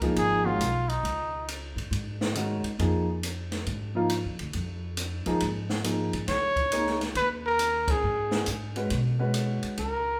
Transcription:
0.00 0.13 C#2 medium
0.00 0.43 F3 medium
0.00 0.43 A#3 medium
0.00 0.43 D#4 medium
0.00 0.44 G#4 medium
0.00 kick soft
0.00 ride soft
0.16 0.57 G#1 medium
0.16 0.47 G#4 loud
0.16 ride medium
0.46 0.59 D#3 medium
0.46 0.59 G#3 medium
0.46 0.60 C#4 medium
0.46 0.91 F4 medium
0.46 0.60 F#4 medium
0.59 1.01 B1 medium
0.59 hi-hat pedal medium
0.59 ride medium
0.89 1.48 D#4 medium
0.89 ride soft
1.03 1.72 C#2 medium
1.03 ride medium
1.48 hi-hat pedal soft
1.48 ride medium
1.76 1.90 G#2 medium
1.76 ride soft
1.91 2.60 G#2 medium
1.91 ride medium
2.21 snare medium
2.35 2.62 D#3 medium
2.35 2.62 G#3 medium
2.35 2.62 C#4 medium
2.35 2.62 F#4 medium
2.35 hi-hat pedal medium
2.35 ride medium
2.63 muted upright bass stroke soft
2.63 ride soft
2.79 3.62 F2 medium
2.79 3.05 F3 medium
2.79 3.05 A#3 medium
2.79 3.05 D#4 medium
2.79 3.06 G#4 medium
2.79 ride soft
3.23 hi-hat pedal medium
3.23 ride medium
3.52 snare soft
3.52 ride soft
3.66 4.21 G#2 medium
3.66 ride soft
3.95 4.08 F3 medium
3.95 4.09 A#3 medium
3.95 4.09 D#4 medium
3.95 4.09 F4 medium
4.09 hi-hat pedal medium
4.09 ride medium
4.25 4.38 F2 medium
4.39 4.53 D2 medium
4.39 ride soft
4.53 5.22 F2 medium
4.53 ride medium
4.97 hi-hat pedal medium
4.97 ride medium
5.26 5.40 D#2 medium
5.26 5.39 F3 medium
5.26 5.40 A#3 medium
5.26 5.40 D#4 medium
5.26 5.40 G#4 medium
5.26 ride soft
5.40 6.10 G#2 medium
5.40 ride medium
5.69 snare soft
5.84 6.10 F3 medium
5.84 6.10 A#3 soft
5.84 6.11 D#4 medium
5.84 6.11 G#4 medium
5.84 hi-hat pedal medium
5.84 ride medium
6.13 6.27 G#2 medium
6.13 ride soft
6.27 7.11 C#2 medium
6.27 6.97 C#5 loud
6.27 snare soft
6.27 ride medium
6.56 kick soft
6.56 ride soft
6.72 6.98 A#3 medium
6.72 6.98 D#4 medium
6.72 6.98 G#4 medium
6.72 6.99 C#5 medium
6.72 hi-hat pedal medium
6.72 ride medium
6.87 snare soft
7.01 snare soft
7.01 ride soft
7.15 7.99 D#2 medium
7.15 7.29 B4 loud
7.15 ride medium
7.46 7.93 A#4 medium
7.59 hi-hat pedal medium
7.59 ride medium
7.88 8.48 G#4 medium
7.88 kick medium
7.88 ride medium
8.03 8.44 G#2 medium
8.31 snare medium
8.46 8.87 G#2 medium
8.46 hi-hat pedal medium
8.46 ride medium
8.76 8.89 G#3 medium
8.76 8.89 C#4 medium
8.76 8.89 F#4 medium
8.76 8.90 B4 medium
8.76 ride soft
8.90 9.59 B2 medium
8.90 ride medium
9.19 9.75 G#3 medium
9.19 9.75 C#4 medium
9.19 9.75 F#4 medium
9.19 9.75 B4 medium
9.34 hi-hat pedal medium
9.34 ride medium
9.63 muted upright bass stroke soft
9.63 ride soft
9.77 10.20 C#2 medium
9.77 10.20 A#4 medium
9.77 ride medium

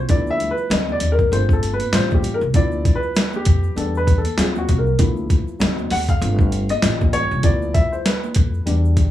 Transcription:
0.08 0.47 D2 loud
0.08 0.67 F3 medium
0.08 0.67 B3 soft
0.08 0.68 E4 medium
0.08 0.30 D5 medium
0.08 kick medium
0.08 closed hi-hat medium
0.08 shaker medium
0.27 0.49 E5 loud
0.27 high conga soft
0.27 shaker soft
0.40 closed hi-hat medium
0.40 low conga medium
0.40 shaker soft
0.51 0.71 B4 medium
0.57 shaker soft
0.70 0.94 D2 loud
0.70 1.28 F#3 medium
0.70 1.29 C4 medium
0.70 1.29 D#4 medium
0.70 0.92 D#5 medium
0.70 snare medium
0.70 closed hi-hat medium
0.88 1.12 D5 medium
0.88 high conga medium
0.88 shaker soft
1.00 1.25 D#2 medium
1.00 closed hi-hat medium
1.00 low conga medium
1.00 shaker soft
1.12 1.31 A#4 medium
1.19 kick medium
1.19 shaker soft
1.31 1.79 G1 medium
1.31 1.89 A3 soft
1.31 1.90 C4 soft
1.31 1.90 F4 medium
1.31 1.53 C5 medium
1.31 closed hi-hat medium
1.31 shaker medium
1.49 1.71 A4 medium
1.49 kick medium
1.49 shaker medium
1.63 closed hi-hat medium
1.63 shaker soft
1.73 1.92 B4 medium
1.80 closed hi-hat medium
1.80 high conga medium
1.80 shaker soft
1.93 2.31 A1 medium
1.93 2.36 G3 medium
1.93 2.36 C#4 medium
1.93 2.36 F4 medium
1.93 2.14 C5 medium
1.93 snare loud
1.93 closed hi-hat medium
1.93 shaker medium
2.11 2.35 G4 medium
2.11 kick medium
2.11 high conga medium
2.11 shaker soft
2.23 closed hi-hat medium
2.23 low conga medium
2.23 shaker soft
2.34 2.39 A#4 medium
2.41 2.54 C2 medium
2.41 shaker soft
2.54 2.92 D2 loud
2.54 3.72 F3 medium
2.54 3.73 B3 soft
2.54 3.73 E4 medium
2.54 2.97 D5 medium
2.54 kick loud
2.54 closed hi-hat medium
2.54 shaker medium
2.72 high conga soft
2.72 shaker soft
2.85 kick loud
2.85 closed hi-hat medium
2.85 low conga medium
2.85 shaker soft
2.95 3.37 B4 medium
3.03 shaker soft
3.15 snare loud
3.15 closed hi-hat loud
3.15 shaker medium
3.33 3.74 G4 medium
3.33 high conga soft
3.33 shaker soft
3.45 3.70 F2 medium
3.45 kick loud
3.45 closed hi-hat loud
3.45 low conga medium
3.45 shaker soft
3.64 shaker soft
3.76 4.24 E2 medium
3.76 4.19 G3 medium
3.76 4.19 B3 soft
3.76 4.19 D4 medium
3.76 3.96 A4 medium
3.76 closed hi-hat medium
3.76 shaker medium
3.95 4.16 B4 medium
3.95 shaker soft
4.07 kick loud
4.07 closed hi-hat medium
4.07 shaker soft
4.18 4.39 A4 medium
4.25 closed hi-hat medium
4.25 high conga medium
4.25 shaker soft
4.37 4.61 D#2 medium
4.37 4.80 F#3 soft
4.37 4.80 C4 medium
4.37 4.81 F4 medium
4.37 4.43 G#4 medium
4.37 snare medium
4.37 closed hi-hat loud
4.37 shaker medium
4.55 4.77 F#4 medium
4.55 high conga medium
4.55 shaker medium
4.68 4.93 C2 medium
4.68 kick medium
4.68 closed hi-hat medium
4.68 low conga medium
4.68 shaker soft
4.78 5.07 A#4 medium
4.86 shaker soft
4.98 5.37 D2 loud
4.98 5.57 F3 medium
4.98 5.57 B3 soft
4.98 5.57 E4 medium
4.98 kick loud
4.98 closed hi-hat medium
4.98 shaker medium
5.17 high conga soft
5.17 shaker soft
5.30 kick medium
5.30 closed hi-hat medium
5.30 low conga medium
5.30 shaker soft
5.48 shaker soft
5.59 5.84 D2 loud
5.59 6.03 F#3 medium
5.59 6.03 C4 soft
5.59 6.03 D#4 medium
5.59 snare loud
5.59 closed hi-hat loud
5.59 shaker medium
5.78 high conga medium
5.78 shaker soft
5.90 6.15 D#2 medium
5.90 5.96 F#5 loud
5.90 open hi-hat medium
5.90 low conga medium
5.90 shaker soft
6.09 6.72 F5 loud
6.09 kick medium
6.09 closed hi-hat soft
6.09 shaker soft
6.21 6.69 G1 loud
6.21 6.79 A3 soft
6.21 6.79 C4 soft
6.21 6.80 F4 medium
6.21 closed hi-hat medium
6.21 shaker medium
6.39 kick medium
6.39 shaker soft
6.52 closed hi-hat medium
6.52 shaker soft
6.69 7.15 D#5 loud
6.69 closed hi-hat medium
6.69 high conga soft
6.69 shaker soft
6.82 7.20 A1 medium
6.82 7.40 G3 medium
6.82 7.40 C#4 soft
6.82 7.41 F4 medium
6.82 snare loud
6.82 closed hi-hat medium
6.82 shaker medium
7.01 kick loud
7.01 high conga medium
7.01 shaker soft
7.13 7.45 C#5 medium
7.13 closed hi-hat medium
7.13 high conga soft
7.13 low conga medium
7.13 shaker soft
7.31 7.44 C2 medium
7.31 shaker soft
7.43 7.82 D2 loud
7.43 8.62 F3 medium
7.43 8.62 B3 soft
7.43 8.62 E4 medium
7.43 7.75 D5 medium
7.43 kick loud
7.43 closed hi-hat medium
7.43 shaker medium
7.62 high conga soft
7.62 shaker soft
7.74 7.93 E5 medium
7.74 kick medium
7.74 closed hi-hat medium
7.74 low conga medium
7.74 shaker soft
7.92 8.04 C5 medium
7.92 shaker soft
8.05 8.62 B4 medium
8.05 snare medium
8.05 closed hi-hat loud
8.24 high conga medium
8.24 shaker soft
8.35 8.60 F2 medium
8.35 kick loud
8.35 closed hi-hat loud
8.35 low conga medium
8.35 shaker soft
8.54 shaker soft
8.66 9.11 E2 medium
8.66 9.11 G3 soft
8.66 9.11 B3 soft
8.66 9.11 D4 medium
8.66 closed hi-hat medium
8.66 shaker medium
8.85 shaker soft
8.97 kick medium
8.97 closed hi-hat medium
8.97 shaker soft

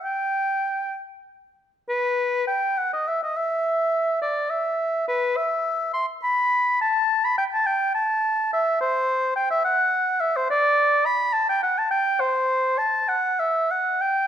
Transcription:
0.04 0.94 G5 medium
1.89 2.44 B4 medium
2.47 2.79 G5 medium
2.78 2.93 F#5 medium
2.93 3.09 D#5 medium
3.07 3.22 E5 medium
3.23 3.38 D#5 medium
3.36 4.21 E5 medium
4.21 4.52 D5 medium
4.50 5.07 E5 medium
5.08 5.38 B4 medium
5.37 5.93 E5 medium
5.94 6.06 C6 medium
6.23 6.80 B5 medium
6.81 7.26 A5 medium
7.25 7.37 B5 medium
7.38 7.44 G5 medium
7.54 7.68 A5 medium
7.66 7.94 G5 medium
7.95 8.51 A5 medium
8.53 8.80 E5 medium
8.81 9.35 C5 medium
9.36 9.50 G5 medium
9.50 9.64 E5 medium
9.64 10.22 F#5 medium
10.20 10.38 E5 medium
10.36 10.49 C5 medium
10.50 11.07 D5 medium
11.06 11.34 B5 medium
11.33 11.48 A5 medium
11.49 11.62 G5 medium
11.63 11.80 F#5 medium
11.78 11.90 A5 medium
11.91 12.21 G5 medium
12.20 12.80 C5 medium
12.78 13.10 A5 medium
13.08 13.41 F#5 medium
13.39 13.72 E5 medium
13.71 14.02 F#5 medium
14.01 14.27 G5 medium

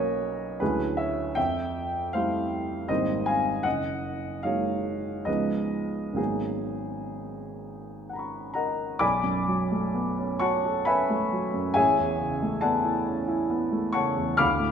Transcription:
0.00 0.63 B1 soft
0.00 0.57 F#3 soft
0.00 0.57 A#3 soft
0.00 0.57 C#4 soft
0.00 0.57 F#4 soft
0.00 0.57 A#4 soft
0.00 0.60 B4 medium
0.00 0.60 C#5 medium
0.00 0.63 D#5 medium
0.60 1.35 D2 soft
0.60 1.33 F#3 soft
0.60 1.33 A3 soft
0.60 1.34 C#4 soft
0.60 1.34 E4 soft
0.60 0.96 G#4 soft
0.60 0.98 B4 medium
0.97 1.34 C#5 soft
0.97 1.35 E5 medium
1.35 2.11 F2 soft
1.35 2.10 E5 medium
1.35 2.13 G5 medium
2.13 2.86 G3 soft
2.13 2.86 A3 soft
2.13 2.86 C4 soft
2.13 2.86 E4 soft
2.13 2.86 C5 medium
2.13 2.89 F5 medium
2.88 3.63 G#1 soft
2.88 3.61 G3 soft
2.88 3.61 A#3 soft
2.88 3.62 C4 soft
2.88 3.62 D#4 soft
2.88 3.24 C5 soft
2.88 3.26 D#5 medium
3.26 3.62 F5 soft
3.26 3.64 G#5 medium
3.63 4.41 F#1 soft
3.63 4.40 D#5 medium
3.63 4.43 F#5 medium
4.43 5.23 F#3 soft
4.43 5.24 G#3 soft
4.43 5.24 A#3 soft
4.43 5.24 D#4 soft
4.43 5.23 C#5 soft
4.43 5.27 F5 medium
5.25 6.15 C#2 soft
5.25 6.13 F3 soft
5.25 6.14 G#3 soft
5.25 6.14 B3 soft
5.25 6.14 D#4 soft
5.25 6.13 B4 soft
5.25 6.17 D#5 medium
6.13 8.96 G#1 soft
6.13 8.96 F#3 soft
6.13 8.97 A#3 soft
6.13 8.97 B3 soft
6.13 8.98 C#4 soft
6.13 8.55 G#4 soft
6.18 8.52 D#4 soft
8.09 8.53 F#5 soft
8.09 8.52 A#5 soft
8.16 8.99 B5 soft
8.16 9.03 C#6 soft
8.54 8.98 A#4 soft
8.54 8.98 D#5 soft
8.54 8.98 F#5 soft
8.54 9.01 A#5 medium
8.99 11.72 B1 soft
8.99 10.37 D5 medium
8.99 10.37 G#5 medium
8.99 10.37 B5 medium
8.99 10.40 D6 medium
9.24 9.62 F#2 soft
9.48 9.86 F#3 soft
9.71 10.09 A3 soft
9.94 10.32 B3 soft
10.18 10.55 C#4 soft
10.39 10.77 F#4 soft
10.39 10.83 C#5 medium
10.39 10.83 F#5 medium
10.39 10.84 A5 medium
10.39 10.86 C#6 medium
10.65 11.01 A4 soft
10.85 11.23 C#4 soft
10.85 11.72 B4 medium
10.85 11.72 E5 medium
10.85 11.72 G#5 medium
10.85 11.75 B5 medium
11.10 11.46 A3 soft
11.32 11.68 F#3 soft
11.54 11.76 F#2 soft
11.74 14.36 A1 soft
11.74 12.59 G#4 medium
11.74 12.58 C#5 medium
11.74 12.58 E5 medium
11.74 12.62 G#5 medium
11.99 12.33 E2 soft
12.19 12.54 C#3 soft
12.42 12.76 A3 soft
12.61 12.98 B3 soft
12.61 13.91 A4 soft
12.61 13.91 D5 soft
12.61 13.91 F#5 soft
12.61 13.92 A5 medium
12.84 13.20 E4 soft
13.05 13.41 C#4 soft
13.28 13.64 E4 soft
13.50 13.86 B3 soft
13.72 14.08 A3 soft
13.93 14.30 C#3 soft
13.93 14.36 C#5 medium
13.93 14.36 F#5 medium
13.93 14.36 A5 medium
13.93 14.38 C#6 medium
14.16 14.39 E2 soft
14.37 14.72 D2 medium
14.37 14.72 F5 medium
14.37 14.72 B5 medium
14.37 14.72 D6 medium
14.37 14.72 F6 medium
14.60 14.72 A2 soft

